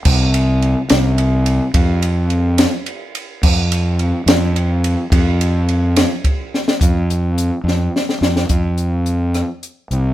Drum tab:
CC |x-----------|------------|x-----------|------------|
RD |--x-x-x-x-x-|x-x-x-x-x-x-|--x-x-x-x-x-|x-x-x-x-x---|
HH |------------|------------|------------|------------|
SD |------o-----|------o-----|------o-----|------o---oo|
BD |o-----------|o-----------|o-----------|o-------o---|

CC |------------|------------|
RD |------------|------------|
HH |x-x-x-------|x-x-x-x-x-x-|
SD |------o-oooo|------r-----|
BD |o-----------|o-----------|